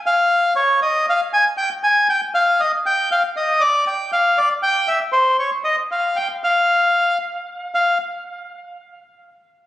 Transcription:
0.06 F5
0.56 C#5
0.82 D#5
1.10 F5
1.33 G#5
1.57 G5
1.84 G#5
2.09 G5
2.35 F5
2.60 D#5
2.86 G5
3.12 F5
3.37 D#5
3.61 D5
3.87 G5
4.13 F5
4.38 D5
4.63 G5
4.88 E5
5.12 C5
5.39 C#5
5.64 D#5
5.92 F5
6.16 G5
6.44 F5
7.75 F5

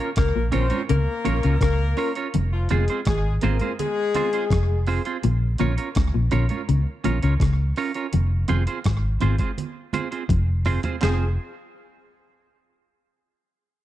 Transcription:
0.16 C#2 C#3 A#3 A#4, kick, cross-stick, closed hi-hat, high conga
0.36 A#1 A#2
0.52 A#1 A#2 C4 C#4 F4 A#4 C5 C#5, closed hi-hat, low conga
0.70 C#4 F4 A#4 C#5, closed hi-hat, high conga
0.89 C#2 C#3 A#3 A#4, closed hi-hat, low conga
1.25 A#1 A#2 C#4 F4 A#4 C#5, closed hi-hat, low conga
1.43 C#2 C#3 C#4 F4 A#4 C#5, closed hi-hat
1.60 C#2 C#3 A#3 A#4, kick, cross-stick, closed hi-hat
1.97 C#4 F4 A#4 C#5, open hi-hat
2.15 C#4 F4 A#4 C#5, closed hi-hat
2.34 F1 F2, closed hi-hat, low conga
2.52 F3 F4
2.69 F1 F2 G#3 C4 F4 G#4 C5, closed hi-hat, low conga
2.88 C4 F4 G#4 C5, closed hi-hat
3.05 G#1 G#2 G#3 G#4, kick, cross-stick, closed hi-hat, high conga
3.41 G#1 G#2 A#3 C4 F4 G#4 A#4 C5, closed hi-hat, low conga
3.60 C4 F4 G#4 C5, closed hi-hat, high conga
3.79 G#3 G#4, closed hi-hat, low conga
4.14 C4 F4 G#4 C5, closed hi-hat, low conga
4.33 C4 F4 G#4 C5, closed hi-hat
4.50 F1 F2, kick, cross-stick, closed hi-hat
4.87 C4 F4 G#4 C5, open hi-hat
5.05 C4 F4 G#4 C5, closed hi-hat
5.23 A#1 A#2, closed hi-hat, low conga
5.58 A#1 A#2 C#4 F4 A#4 C#5, closed hi-hat, low conga
5.77 C#4 F4 A#4 C#5, closed hi-hat
5.95 C#2 C#3, kick, cross-stick, closed hi-hat, high conga
6.14 A#1 A#2
6.31 A#1 A#2 C#4 F4 A#4 C#5, closed hi-hat, low conga
6.49 C#4 F4 A#4 C#5, closed hi-hat, high conga
6.69 C#2 C#3, closed hi-hat, low conga
7.04 A#1 A#2 C#4 F4 A#4 C#5, closed hi-hat, low conga
7.23 C#2 C#3 C#4 F4 A#4 C#5, closed hi-hat
7.40 C#2 C#3, kick, cross-stick, closed hi-hat
7.76 C#4 F4 A#4 C#5, open hi-hat
7.94 C#4 F4 A#4 C#5, closed hi-hat
8.13 F1 F2, closed hi-hat, low conga
8.48 F1 F2 C4 F4 G#4 C5, closed hi-hat, low conga
8.67 C4 F4 G#4 C5, closed hi-hat
8.84 G#1 G#2, kick, cross-stick, closed hi-hat, high conga
9.20 G#1 G#2 C4 F4 G#4 C5, closed hi-hat, high conga, low conga
9.38 C4 F4 G#4 C5, kick, closed hi-hat, high conga
9.58 closed hi-hat, low conga
9.93 C4 F4 G#4 C5, closed hi-hat, high conga, low conga
10.11 C4 F4 G#4 C5, closed hi-hat
10.29 F1 F2, kick, closed hi-hat, high tom, high conga
10.65 C4 F4 G#4 C5, mid tom, open hi-hat
10.83 C4 F4 G#4 C5, closed hi-hat, floor tom, high conga
11.01 F1 F3 C4 F4 G#4 C5, snare, clap, low conga

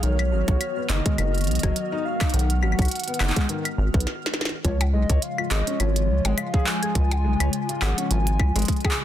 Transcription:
Already playing: G#3 F6
0.03 B1 D#3 B3 F#4 C#5, closed hi-hat
0.19 closed hi-hat, claves
0.32 G#1 F#3
0.48 B1 F#4, kick, closed hi-hat
0.61 closed hi-hat, claves
0.77 B3
0.90 F#1 D#4 D#5, clap, closed hi-hat
1.06 G#3, kick, closed hi-hat
1.18 F#1 D#3, closed hi-hat, claves
1.34 closed hi-hat
1.38 closed hi-hat
1.41 closed hi-hat
1.44 closed hi-hat
1.47 B1, closed hi-hat
1.51 closed hi-hat
1.55 closed hi-hat
1.59 closed hi-hat
1.63 F#1 F#3, kick, closed hi-hat, claves
1.76 closed hi-hat
1.92 D#4
2.05 F5
2.21 D#4, kick, clap, closed hi-hat, claves
2.30 closed hi-hat
2.34 B1 D#3 F#5, closed hi-hat
2.39 closed hi-hat
2.50 closed hi-hat
2.63 G#1 F#3, claves
2.72 claves
2.79 B1 F#4, kick, closed hi-hat, claves
2.82 closed hi-hat
2.85 closed hi-hat
2.88 closed hi-hat
2.91 closed hi-hat
2.95 closed hi-hat
3.00 closed hi-hat
3.04 closed hi-hat
3.08 B3, closed hi-hat
3.14 closed hi-hat
3.20 F#1 D#4, clap, closed hi-hat, claves
3.28 clap, closed hi-hat
3.36 G#3, kick, clap, closed hi-hat
3.49 D#3, closed hi-hat
3.65 closed hi-hat, claves
3.78 G#1
3.94 B1 B3, kick
4.00 closed hi-hat
4.07 snare
4.26 snare
4.34 snare
4.41 snare
4.45 snare
4.49 snare
4.65 C#2 C#3 F3 G#3 F4 C#5, kick, closed hi-hat
4.81 closed hi-hat, percussion blips, claves
4.93 B1 G#3 D#5
5.10 C#2 C#5, kick, closed hi-hat
5.22 F5, closed hi-hat
5.38 F4, claves
5.51 G#1 G#4 D#5, clap, closed hi-hat
5.67 C#4, closed hi-hat
5.80 G#1 F3 C#5, closed hi-hat, claves
5.96 closed hi-hat
6.09 C#2
6.25 G#1 G#3, closed hi-hat, percussion blips
6.38 F5, closed hi-hat, claves
6.54 G#4, kick
6.66 G#5, clap
6.83 G#4, closed hi-hat, claves
6.95 C#2 F3, kick, closed hi-hat
7.11 closed hi-hat, percussion blips
7.24 B1 G#3
7.40 C#2 C#5, closed hi-hat, claves
7.53 closed hi-hat
7.69 F4, closed hi-hat
7.82 G#1 G#4 F#5, clap, claves
7.98 C#4, closed hi-hat
8.11 G#1 F3 G#5, closed hi-hat
8.27 closed hi-hat
8.40 C#2, kick, claves
8.56 G#1 G#3, closed hi-hat
8.59 closed hi-hat
8.62 closed hi-hat
8.65 kick, closed hi-hat
8.68 closed hi-hat
8.76 closed hi-hat
8.80 closed hi-hat
8.85 G#4, kick, percussion blips, claves
8.91 clap

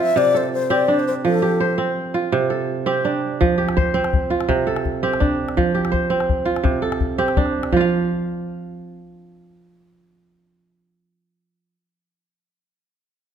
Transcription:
Already playing: F3 C4 F4 G4 C5
0.00 E5
0.16 C3 D5
0.34 A4 C5
0.53 C5
0.70 C4 G4 D5
0.88 D4
0.99 C5
1.07 C5
1.25 F3 A4
1.42 G4
1.60 C5
1.78 C4
2.14 F4
2.32 C3
2.50 A4
2.86 C4 G4
3.05 D4
3.41 F3, calabash thump, calabash click
3.58 G4
3.69 calabash click
3.77 C5, calabash thump
3.94 C4
4.04 calabash click
4.13 calabash thump
4.30 F4
4.41 calabash click
4.49 C3, calabash thump, calabash click
4.67 A4
4.76 calabash click
4.85 calabash thump
5.03 C4 G4
5.14 calabash click
5.20 D4, calabash thump, calabash click
5.49 calabash click
5.57 F3, calabash thump
5.75 G4, calabash click
5.85 calabash click
5.92 C5, calabash thump
6.10 C4
6.20 calabash click
6.29 calabash thump, calabash click
6.45 F4
6.56 calabash click
6.64 C3, calabash thump, calabash click
6.82 A4
6.92 calabash click
7.00 calabash thump
7.18 C4 G4
7.28 calabash click
7.37 D4, calabash thump, calabash click
7.46 calabash click
7.63 calabash click
7.72 F3, calabash thump
7.77 F4 F5

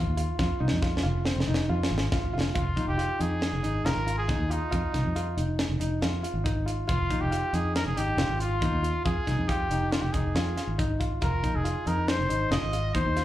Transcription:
Already playing: F4
0.07 D#2
0.17 F4, closed hi-hat
0.39 F2 F4, kick, snare
0.60 C2 D#4
0.68 F2, snare
0.82 F4, kick, snare
0.97 snare
1.03 F1 F4
1.25 C4, snare
1.36 F1
1.40 snare
1.47 F1 D#4
1.54 snare
1.69 F2 F4
1.83 snare
1.91 G#1
1.98 snare
2.12 G1 F4, kick, snare
2.33 F1 F4
2.41 snare
2.55 F1 F4, kick, closed hi-hat
2.76 A#1 D#4, kick, closed hi-hat
2.88 F1 G4
2.98 F4, closed hi-hat
3.19 F2 D#4 G#4, closed hi-hat
3.42 snare, closed hi-hat
3.53 F1
3.63 G#1 D#4, closed hi-hat
3.85 F1 F4 A#4, snare, closed hi-hat
3.96 G#1
4.07 F4, closed hi-hat
4.18 G#4
4.28 F2 D#4, kick, snare, closed hi-hat
4.38 D#2
4.50 D#4 F4, closed hi-hat
4.71 F2 F4, kick, closed hi-hat
4.93 C2 D#4, kick, snare, closed hi-hat
5.05 F2
5.16 F4, closed hi-hat
5.37 F1 D#4, closed hi-hat
5.59 snare, closed hi-hat
5.69 F1
5.80 F1 D#4, closed hi-hat
6.02 F2 F4, snare, closed hi-hat
6.23 F4, closed hi-hat
6.34 G#1
6.44 D#4, kick, closed hi-hat
6.66 F4, closed hi-hat
6.88 F1 F4, kick, closed hi-hat
7.10 A#1 D#4, kick, closed hi-hat
7.21 F1 G4
7.31 F4, closed hi-hat
7.53 F2 D#4 G#4, closed hi-hat
7.75 A#4, snare, closed hi-hat
7.86 F1 G#4
7.96 G#1 D#4 G4, closed hi-hat
8.17 F1 F4, snare, closed hi-hat
8.29 G#1
8.40 F4, closed hi-hat
8.61 F2 D#4, kick, closed hi-hat
8.72 D#2
8.83 F4, closed hi-hat
9.05 F2 F4 G#4, kick, closed hi-hat
9.27 C2 D#4, kick, snare, closed hi-hat
9.38 F2
9.48 F4 G4, kick, closed hi-hat
9.70 F1 D#4, closed hi-hat
9.92 F4, snare, closed hi-hat
10.02 F1 G4
10.12 F1 D#4 G#4, kick, closed hi-hat
10.35 F2 F4, snare, closed hi-hat
10.57 F4, snare, closed hi-hat
10.67 G#1
10.78 D#4, kick, closed hi-hat
11.00 F4, kick, closed hi-hat
11.22 F1 F4 A#4, kick, closed hi-hat
11.43 A#1 D#4, kick, closed hi-hat
11.54 F1 G#4
11.64 F4, closed hi-hat
11.86 F2 D#4 A#4, closed hi-hat
12.08 C5, snare, closed hi-hat
12.19 F1
12.29 G#1 D#4, closed hi-hat
12.51 F1 F4 D#5, snare, closed hi-hat
12.62 G#1
12.73 F4, closed hi-hat
12.94 F2 D#4 C5, kick, closed hi-hat
13.05 D#2
13.16 F4, snare, closed hi-hat

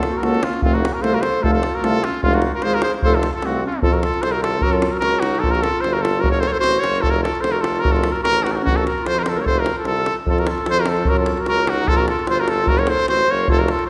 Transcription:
Already playing: F4 A4
0.03 davul high
0.13 F#4
0.17 A#4
0.22 C#2 A#3 F#4 A4, davul high
0.35 davul high
0.43 C#4 F4, davul high
0.53 davul high
0.61 F1 A3 C4 F4, davul low
0.74 D#4 F#4, davul high
0.85 davul high
0.93 F#4 A#4
1.02 C2 A3 F4 A4 C5, davul high
1.13 F#4 A#4, davul high
1.21 A4 C5, davul high
1.33 davul high
1.42 F1 A3 F4 A4, davul low
1.51 F4 A4, davul high
1.63 davul high
1.74 F#4 A#4
1.82 C2 A3 F4 A4, davul high
2.04 C#4 F4, davul high
2.14 davul high
2.23 F1 G#3 C#4 F4, davul low
2.34 D#4 F#4, davul high
2.42 davul high
2.54 F#4 A#4
2.62 G#1 G#3 F4 G#4 C5, davul high
2.74 F#4 A#4, davul high
2.82 G#4 C5, davul high
2.94 davul high
3.02 F1 A3 F4 A4 C5, davul low
3.15 F4 A4
3.23 davul high
3.33 F4 A4, davul high
3.42 C2 A3 C4 F4 F#4, davul high
3.66 C#4 F4
3.72 davul high
3.82 F2 F4 A4, davul low
3.92 F#4 A#4, davul high
4.02 F4 A4, davul high
4.14 davul high
4.22 C2 A4 C5, davul high
4.32 F#4 A#4
4.42 F4 A4, davul high
4.54 davul high
4.61 F#2 F#4 A#4, davul low
4.72 F4 A4, davul high
4.82 davul high
4.91 F#4 A#4, davul high
4.99 A#4, davul high
5.03 C#2 F#4
5.20 D#4 F#4, davul high
5.35 davul high
5.39 A#1 A4
5.44 F4, davul low
5.51 F#4 A#4
5.55 davul high
5.62 F4 A4, davul high
5.75 davul high
5.81 G1 F4 C5, davul high
5.92 F#4 A#4
6.01 F4 A4, davul high
6.15 davul high
6.20 F#1 F#4 A#4, davul low
6.31 A#4 C#5, davul high
6.40 A4 C5, davul high
6.47 A4 A#4 C#5
6.52 C5, davul high
6.59 A1 F#4 C5
6.64 davul high
6.79 F#1 A#4 C#5
6.84 davul high
6.95 davul high
7.00 F4 A4, davul low
7.04 F1
7.10 F#4 A#4
7.16 davul high
7.20 F4 A4
7.25 davul high
7.35 davul high
7.40 F1 A4 C5, davul high
7.52 F#4 A#4
7.61 F4 A4, davul high
7.76 davul high
7.80 F#4 A#4
7.85 F#1, davul low
7.91 F4 A4
7.96 davul high
8.04 davul high
8.12 F#4 A#4, davul high
8.23 A1 F#4 A#4, davul high
8.42 D#4 F#4
8.46 F4, davul high
8.51 D#4 A4
8.56 F#4, davul high
8.61 A#1 C#4 F#4
8.67 davul low
8.72 F4
8.76 A4, davul high
8.81 F#4
8.87 A#4, davul high
8.98 davul high
9.02 F2 F4 C5
9.06 davul high
9.13 F#4 A4
9.18 F#4 A#4
9.23 F4 C5, davul high
9.28 A4
9.36 A#4, davul high
9.40 C#5
9.45 F1 A4 C5, davul low
9.55 F#4, davul high
9.59 A#4
9.66 davul high
9.75 F4 A4, davul high
9.84 C2 F4 A4, davul high
9.97 davul high
10.06 davul high
10.26 F2 F4 A4, davul low
10.38 F#4 A#4, davul high
10.47 F4 A4, davul high
10.58 davul high
10.66 F2 A4 C5, davul high
10.78 F#4 A#4
10.86 F4 A4, davul high
10.97 davul high
11.05 F#2 F#4, davul low
11.09 A#4
11.17 F4 A4, davul high
11.26 davul high
11.37 F#4 A#4, davul high
11.46 C#2 F#4 A#4, davul high
11.67 D#4 F#4, davul high
11.78 davul high
11.88 A#1 F4 A4, davul low
11.97 F#4 A#4, davul high
12.08 F4 A4, davul high
12.19 davul high
12.27 G1 F4 C5, davul high
12.40 F#4 A#4
12.48 F4 A4, davul high
12.58 davul high
12.67 F#1 F#4 A#4, davul low
12.79 A#4 C#5, davul high
12.87 A4 C5, davul high
13.00 davul high
13.08 A1 F#4 C5, davul high
13.18 davul high
13.27 F#1 A#4 C#5
13.48 F1 F4 A4, davul low
13.59 F#4 A#4, davul high
13.68 F4 A4, davul high
13.79 davul high

